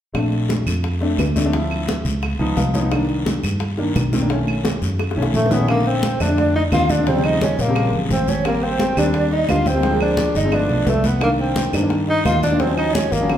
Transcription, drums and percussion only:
0.15 high bongo medium
0.15 high conga soft
0.15 long guiro medium
0.15 claves medium
0.32 high conga soft
0.49 high bongo soft
0.49 high conga medium
0.49 short guiro medium
0.67 high bongo soft
0.67 short guiro medium
0.67 claves medium
0.84 high bongo medium
0.84 high conga soft
0.84 long guiro medium
1.01 high bongo soft
1.01 high conga soft
1.19 high bongo soft
1.19 low bongo medium
1.19 high conga medium
1.19 short guiro medium
1.19 claves medium
1.36 high bongo soft
1.36 high conga medium
1.36 short guiro medium
1.53 high bongo medium
1.53 high conga soft
1.53 long guiro medium
1.71 high conga soft
1.71 claves medium
1.88 high bongo soft
1.88 high conga medium
1.88 short guiro medium
2.05 high bongo soft
2.05 high conga soft
2.05 short guiro medium
2.22 high bongo medium
2.22 high conga soft
2.22 long guiro medium
2.22 claves medium
2.40 high bongo soft
2.40 high conga soft
2.57 high bongo soft
2.57 low bongo medium
2.57 high conga medium
2.57 short guiro medium
2.74 high bongo soft
2.74 high conga medium
2.74 short guiro medium
2.92 high bongo medium
2.92 high conga soft
2.92 long guiro medium
2.92 claves medium
3.09 high conga soft
3.26 high bongo medium
3.26 high conga medium
3.26 short guiro medium
3.43 high bongo soft
3.43 short guiro medium
3.43 claves medium
3.60 high bongo medium
3.60 high conga soft
3.60 long guiro medium
3.78 high bongo soft
3.78 high conga soft
3.96 high bongo soft
3.96 low bongo medium
3.96 high conga medium
3.96 short guiro medium
3.96 claves medium
4.13 high bongo soft
4.13 high conga medium
4.13 short guiro medium
4.30 high bongo medium
4.30 high conga soft
4.30 long guiro medium
4.47 high conga soft
4.47 claves medium
4.64 high bongo medium
4.64 high conga loud
4.64 short guiro medium
4.82 high bongo soft
4.82 high conga soft
4.82 short guiro medium
4.99 high bongo medium
4.99 high conga soft
4.99 long guiro medium
4.99 claves medium
5.11 high bongo medium
5.17 high conga soft
5.22 high bongo medium
5.34 high conga medium
5.34 short guiro medium
5.46 low bongo medium
5.51 high conga medium
5.51 short guiro medium
5.57 low bongo medium
5.68 high bongo medium
5.68 high conga soft
5.68 long guiro medium
5.68 claves medium
5.86 high conga soft
6.03 high bongo medium
6.03 high conga medium
6.03 short guiro medium
6.20 high bongo soft
6.20 short guiro medium
6.20 claves medium
6.37 high bongo medium
6.37 high conga soft
6.37 long guiro medium
6.55 high bongo soft
6.55 high conga soft
6.72 high bongo soft
6.72 low bongo medium
6.72 high conga medium
6.72 short guiro medium
6.72 claves medium
6.89 high bongo soft
6.89 high conga medium
6.89 short guiro medium
7.07 high bongo medium
7.07 high conga soft
7.07 long guiro medium
7.24 high conga soft
7.24 claves medium
7.41 high bongo medium
7.41 high conga medium
7.41 short guiro medium
7.58 high bongo soft
7.58 high conga soft
7.58 short guiro medium
7.76 high bongo medium
7.76 high conga soft
7.76 long guiro medium
7.76 claves medium
7.93 high bongo soft
7.93 high conga soft
8.10 high bongo soft
8.10 low bongo medium
8.10 high conga medium
8.10 short guiro medium
8.28 high bongo soft
8.28 high conga medium
8.28 short guiro medium
8.45 high bongo medium
8.45 high conga soft
8.45 long guiro medium
8.45 claves medium
8.63 high conga soft
8.79 high bongo medium
8.79 high conga medium
8.79 short guiro medium
8.97 high bongo soft
8.97 short guiro medium
8.97 claves medium
9.14 high bongo medium
9.14 high conga soft
9.14 long guiro medium
9.31 high bongo soft
9.31 high conga soft
9.49 high bongo soft
9.49 low bongo medium
9.49 high conga medium
9.49 short guiro medium
9.49 claves medium
9.66 high bongo soft
9.66 high conga medium
9.66 short guiro medium
9.83 high bongo medium
9.83 high conga soft
9.83 long guiro medium
10.00 high conga soft
10.00 claves medium
10.17 high bongo medium
10.17 high conga loud
10.17 short guiro medium
10.35 high bongo soft
10.35 high conga soft
10.35 short guiro medium
10.52 high bongo medium
10.52 high conga soft
10.52 long guiro medium
10.52 claves medium
10.69 high bongo soft
10.69 high conga soft
10.87 high bongo soft
10.87 low bongo medium
10.87 high conga medium
10.87 short guiro medium
11.04 high bongo soft
11.04 high conga medium
11.04 short guiro medium
11.21 high bongo medium
11.21 high conga soft
11.21 long guiro medium
11.21 claves medium
11.39 high conga soft
11.56 high bongo medium
11.56 high conga loud
11.56 short guiro medium
11.73 high bongo soft
11.73 short guiro medium
11.73 claves medium
11.90 high bongo medium
11.90 high conga soft
11.90 long guiro medium
12.08 high bongo soft
12.08 high conga soft
12.25 high bongo soft
12.25 low bongo medium
12.25 high conga medium
12.25 short guiro medium
12.25 claves medium
12.42 high bongo soft
12.42 high conga medium
12.42 short guiro medium
12.60 high bongo medium
12.60 high conga soft
12.60 long guiro medium
12.78 high conga soft
12.78 claves medium
12.95 high bongo medium
12.95 high conga loud
12.95 short guiro medium
13.12 high bongo soft
13.12 high conga soft
13.12 short guiro medium
13.30 high bongo medium
13.30 high conga soft
13.30 long guiro medium
13.30 claves medium

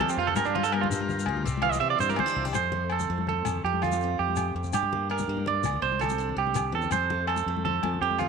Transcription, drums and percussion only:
0.00 muted conga medium
0.00 low conga medium
0.00 low agogo medium
0.09 low conga soft
0.09 shekere medium
0.28 low conga medium
0.36 muted conga loud
0.36 low agogo medium
0.36 shekere loud
0.44 high conga medium
0.44 shekere soft
0.56 low conga loud
0.64 low conga soft
0.64 shekere medium
0.72 low agogo medium
0.83 muted conga medium
0.83 low conga medium
0.91 shekere loud
1.01 high conga medium
1.09 low conga medium
1.09 shekere soft
1.19 low conga soft
1.19 shekere medium
1.26 low agogo medium
1.37 low conga medium
1.47 shekere loud
1.57 high conga medium
1.57 low conga soft
1.62 low conga medium
1.62 low agogo medium
1.73 muted conga medium
1.73 shekere medium
2.01 shekere medium
2.09 high conga medium
2.09 low conga soft
2.09 shekere soft
2.16 muted conga medium
2.16 low conga medium
2.16 low agogo medium
2.27 shekere medium
2.46 low conga medium
2.46 shekere soft
2.53 muted conga medium
2.53 low agogo medium
2.53 shekere medium
2.63 low conga soft
2.72 low conga medium
2.90 low conga soft
2.90 low agogo medium
3.00 muted conga medium
3.00 low conga medium
3.00 shekere medium
3.09 low conga soft
3.18 high conga medium
3.27 low conga medium
3.37 low conga soft
3.45 muted conga medium
3.45 low agogo medium
3.45 shekere medium
3.55 low conga medium
3.73 high conga medium
3.82 low conga medium
3.82 low agogo medium
3.82 shekere soft
3.92 muted conga medium
3.92 shekere medium
4.00 shekere soft
4.28 high conga medium
4.36 muted conga medium
4.36 low agogo medium
4.36 shekere medium
4.64 low conga medium
4.64 shekere soft
4.73 muted conga medium
4.73 low agogo medium
4.73 shekere loud
4.83 high conga medium
4.83 low conga soft
4.93 low conga medium
5.11 low conga soft
5.11 low agogo medium
5.18 muted conga medium
5.18 low conga medium
5.18 shekere medium
5.30 low conga soft
5.37 high conga medium
5.46 low conga medium
5.54 low conga soft
5.63 muted conga medium
5.63 low agogo medium
5.63 shekere medium
5.73 low conga medium
5.92 high conga medium
6.01 low conga medium
6.01 low agogo medium
6.01 shekere soft
6.09 muted conga medium
6.09 shekere medium
6.19 shekere soft
6.29 low conga medium
6.47 high conga medium
6.55 muted conga medium
6.55 low conga medium
6.55 low agogo medium
6.55 shekere medium
6.82 low conga medium
6.82 shekere soft
6.91 muted conga medium
6.91 low agogo medium
6.91 shekere medium
7.02 low conga soft
7.10 low conga loud
7.27 low conga soft
7.27 low agogo medium
7.36 muted conga medium
7.36 shekere medium
7.46 low conga soft
7.56 high conga medium
7.65 low conga medium
7.75 low conga soft
7.83 muted conga medium
7.83 low agogo medium
7.94 low conga medium
8.11 high conga medium
8.19 low conga medium
8.19 low agogo medium
8.19 shekere soft

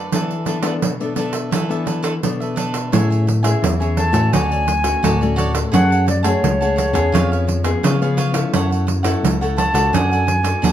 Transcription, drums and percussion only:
0.12 pandeiro medium
0.31 pandeiro soft
0.46 pandeiro medium
0.63 pandeiro medium
0.82 pandeiro medium
1.01 pandeiro soft
1.16 pandeiro medium
1.33 pandeiro medium
1.52 pandeiro medium
1.71 pandeiro soft
1.87 pandeiro medium
2.04 pandeiro medium
2.23 pandeiro medium
2.42 pandeiro soft
2.57 pandeiro medium
2.74 pandeiro medium
2.93 pandeiro medium
3.12 pandeiro soft
3.28 pandeiro medium
3.44 pandeiro medium
3.64 pandeiro medium
3.82 pandeiro soft
3.97 pandeiro medium
4.14 pandeiro medium
4.33 pandeiro medium
4.52 pandeiro soft
4.68 pandeiro medium
4.84 pandeiro medium
5.04 pandeiro medium
5.23 pandeiro soft
5.38 pandeiro medium
5.55 pandeiro medium
5.74 pandeiro medium
5.92 pandeiro soft
6.08 pandeiro medium
6.24 pandeiro medium
6.44 pandeiro medium
6.62 pandeiro soft
6.78 pandeiro medium
6.95 pandeiro medium
7.15 pandeiro medium
7.33 pandeiro soft
7.49 pandeiro medium
7.64 pandeiro medium
7.84 pandeiro medium
8.02 pandeiro soft
8.18 pandeiro medium
8.34 pandeiro medium
8.54 pandeiro medium
8.72 pandeiro soft
8.88 pandeiro medium
9.04 pandeiro medium
9.25 pandeiro medium
9.43 pandeiro soft
9.58 pandeiro medium
9.75 pandeiro medium
9.94 pandeiro medium
10.13 pandeiro soft
10.28 pandeiro medium
10.45 pandeiro medium
10.64 pandeiro medium

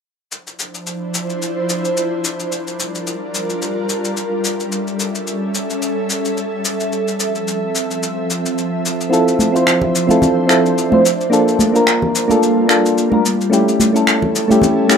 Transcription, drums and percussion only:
0.32 shaker soft
0.47 shaker soft
0.59 shaker medium
0.74 shaker soft
0.87 shaker soft
1.14 shaker medium
1.30 shaker soft
1.42 shaker soft
1.69 shaker medium
1.85 shaker soft
1.97 shaker soft
2.24 shaker medium
2.40 shaker soft
2.52 shaker soft
2.67 shaker soft
2.79 shaker medium
2.95 shaker soft
3.07 shaker soft
3.34 shaker medium
3.50 shaker soft
3.62 shaker soft
3.89 shaker medium
4.04 shaker soft
4.17 shaker soft
4.44 shaker medium
4.60 shaker soft
4.72 shaker soft
4.87 shaker soft
4.99 shaker medium
5.15 shaker soft
5.27 shaker soft
5.54 shaker medium
5.70 shaker soft
5.82 shaker soft
6.10 shaker medium
6.25 shaker soft
6.37 shaker soft
6.65 shaker medium
6.80 shaker soft
6.92 shaker soft
7.08 shaker soft
7.20 shaker medium
7.35 shaker soft
7.47 shaker soft
7.75 shaker medium
7.91 shaker soft
8.03 shaker soft
8.30 shaker medium
8.46 shaker soft
8.58 shaker soft
8.85 shaker medium
9.01 shaker soft
9.13 shaker soft
9.28 shaker soft
9.39 high conga medium
9.39 shaker medium
9.56 shaker soft
9.67 finger snap medium
9.67 shaker soft
9.82 low conga medium
9.95 shaker medium
10.09 high conga medium
10.09 shaker soft
10.22 low conga medium
10.22 shaker soft
10.49 finger snap medium
10.49 shaker medium
10.66 shaker soft
10.78 shaker soft
10.92 high conga medium
11.05 shaker medium
11.21 shaker soft
11.33 shaker soft
11.48 shaker soft
11.59 high conga medium
11.59 shaker medium
11.75 shaker soft
11.87 finger snap medium
11.87 shaker soft
12.02 low conga medium
12.15 shaker medium
12.30 high conga medium
12.30 shaker soft
12.43 shaker soft
12.69 finger snap medium
12.69 shaker medium
12.86 shaker soft
12.98 shaker soft
13.12 high conga medium
13.25 shaker medium
13.41 shaker soft
13.53 shaker soft
13.68 shaker soft
13.80 high conga medium
13.80 shaker medium
13.96 shaker soft
14.07 finger snap medium
14.07 shaker soft
14.22 low conga medium
14.35 shaker medium
14.51 high conga medium
14.51 shaker soft
14.62 low conga medium
14.62 shaker soft
14.89 finger snap medium
14.89 shaker medium

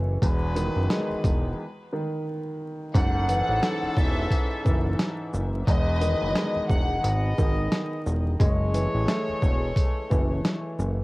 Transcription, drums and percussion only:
0.22 kick loud
0.22 closed hi-hat medium
0.56 closed hi-hat medium
0.56 shaker medium
0.90 snare loud
0.90 closed hi-hat medium
1.24 kick medium
1.24 closed hi-hat medium
1.24 shaker medium
2.95 kick loud
2.95 closed hi-hat medium
3.29 closed hi-hat medium
3.29 shaker medium
3.63 snare loud
3.63 closed hi-hat medium
3.97 kick medium
3.97 shaker medium
4.31 kick medium
4.31 closed hi-hat medium
4.66 kick medium
4.66 shaker medium
4.99 snare loud
4.99 closed hi-hat medium
5.34 shaker medium
5.67 kick loud
5.67 closed hi-hat medium
6.02 closed hi-hat medium
6.02 shaker medium
6.36 snare loud
6.36 closed hi-hat medium
6.69 kick medium
6.69 shaker medium
7.04 closed hi-hat medium
7.38 kick medium
7.38 shaker medium
7.72 snare loud
7.72 closed hi-hat medium
8.06 shaker medium
8.40 kick loud
8.40 closed hi-hat medium
8.74 closed hi-hat medium
8.74 shaker medium
9.08 snare loud
9.08 closed hi-hat medium
9.42 kick medium
9.42 shaker medium
9.76 kick medium
9.76 closed hi-hat medium
10.11 kick medium
10.11 shaker medium
10.45 snare loud
10.45 closed hi-hat medium
10.79 shaker medium

